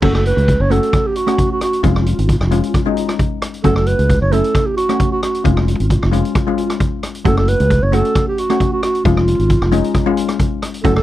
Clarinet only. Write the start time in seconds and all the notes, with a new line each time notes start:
0.03 A4
0.16 A4
0.27 B4
0.61 C#5
0.72 A4
1.07 G4
1.17 F#4
1.52 F#4
1.63 F#4
1.85 F4
1.93 F4
2.01 F4
2.07 F4
2.15 F4
2.23 F4
2.30 F4
2.39 F4
2.46 F4
2.53 F4
2.61 F4
2.69 F4
2.76 F4
2.84 F4
2.91 F4
2.97 F4
3.07 F4
3.65 A4
3.76 A4
3.87 B4
4.22 C#5
4.32 A4
4.67 G4
4.77 F#4
5.12 F#4
5.23 F#4
5.45 F4
5.53 F4
5.61 F4
5.66 F4
5.75 F4
5.83 F4
5.90 F4
5.97 F4
6.05 F4
6.12 F4
6.20 F4
6.27 F4
6.35 F4
6.42 F4
6.50 F4
6.57 F4
6.65 F4
7.27 A4
7.38 A4
7.49 B4
7.83 C#5
7.94 A4
8.28 G4
8.39 F#4
8.73 F#4
8.84 F#4
9.05 F4
10.84 A4
10.96 A4